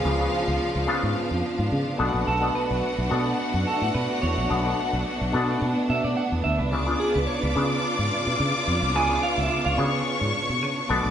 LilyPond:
<<
  \new Staff \with { instrumentName = "String section" } { \time 4/4 \key cis \phrygian \tempo 4 = 108 <eis' eis''>2.~ <eis' eis''>8 <fis' fis''>8~ | <fis' fis''>1~ | <fis' fis''>2.~ <fis' fis''>8 r8 | <d'' d'''>1~ |
<d'' d'''>4. <cis'' cis'''>2 <d'' d'''>8 | }
  \new Staff \with { instrumentName = "Clean electric guitar" } { \time 4/4 \key cis \phrygian gis'2 r2 | a'8 b'4 fis'4 a'8 b'8 cis''8~ | cis''2 r8 e''16 d''16 fis''8 e''16 b'16 | cis''8 gis'16 b'16 cis''16 b'4 r4. r16 |
gis''8 eis''16 e''8 eis''16 cis''16 b'8 r4. r16 | }
  \new Staff \with { instrumentName = "Clav" } { \time 4/4 \key cis \phrygian <cis b d' eis'>16 <cis b d' eis'>4 r16 <cis b d' eis'>4. r8 <b, b d' a'>8 | r16 <b, b d' a'>4 r16 <b, b d' a'>4. r4 | <b, b d' a'>16 <b, b d' a'>4 r16 <b, b d' a'>4. r4 | <cis b d' eis'>16 <cis b d' eis'>4 r16 <cis b d' eis'>4. r4 |
<cis b d' gis'>16 <cis b d' eis'>4 r16 <cis b d' fis' gis'>4. r8 <b, b d' a'>8 | }
  \new Staff \with { instrumentName = "String section" } { \time 4/4 \key cis \phrygian << { d'1~ | d'1~ | d'1~ | d'1~ |
d'1 | } \\ { <cis eis b>2.~ <cis eis b>8 a8~ | a1~ | a1 | <cis eis'>1~ |
<cis eis'>2.~ <cis eis'>8 a8 | } >> }
  \new Staff \with { instrumentName = "Fingered electric bass" } { \clef bass \time 4/4 \key cis \phrygian cis,8 r16 cis,16 r16 cis,16 r16 gis,16 r16 eis,16 r16 gis,16 cis16 r16 b,,16 ais,,16 | b,,8 r16 b,,16 r16 b,,16 b,8 r16 fis,16 r16 a,16 b,16 r16 e,16 ais,,16 | b,,8 r16 b,,16 r16 b,,16 b,8 b,16 r16 b,16 b,16 r16 e,16 d,16 bis,,16 | cis,8 r16 cis,16 r16 cis,16 cis8 r16 gis,16 r16 b,16 cis16 r16 eis,16 bis,,16 |
cis,8 r16 cis,16 r16 cis,16 cis8 r16 gis,16 r16 b,16 cis16 r16 b,,16 ais,,16 | }
>>